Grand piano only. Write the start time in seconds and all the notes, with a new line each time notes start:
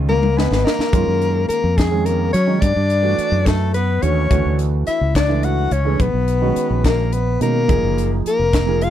Already playing: D#3 G#3 C#4 F4
0.37 G#5
0.64 D#5
0.92 D#3 G#3 C#4 F4
1.90 D#3 G#3 C#4 G#4
2.47 D#3 G#3 C#4 D#4
3.02 E3 A3 D4 F#4
4.02 E3 A3 D4 F#4
4.30 E3 A3 D4 F#4
5.28 E3 A3 D4 E4
5.85 E3 A3 D4 G#4
6.41 D#3 G#3 C#4 F#4
7.40 D#3 G#3 C#4 D#4
7.68 F3 A#3 D#4 G#4
8.66 F3 A#3 D#4 G#4